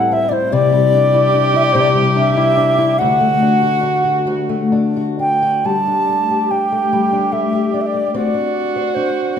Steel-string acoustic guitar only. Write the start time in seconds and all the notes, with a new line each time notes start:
Already playing: A2 G3 C4 E4
0.11 C4
0.31 E4
0.52 C3 E4
0.72 G3
0.93 D4
1.14 E4
1.34 D4
1.54 E4
1.75 C3 E4
1.95 G3
2.16 D4
2.37 E4
2.57 D4
2.78 E4
3.00 D2 F#4
3.20 A3
3.42 D4
3.63 F#4
3.83 D4
4.04 F#4
4.27 D2 F#4
4.49 A3
4.72 D4
4.96 F#4
5.19 D4
5.42 F#4
5.64 G3
5.87 D4
6.09 A3
6.30 G4
6.51 D4
6.72 A3
6.93 G3
7.12 D4
7.33 A3
7.53 G4
7.74 D4
7.94 A3
8.14 C4
8.34 D4
8.76 C5
8.96 D4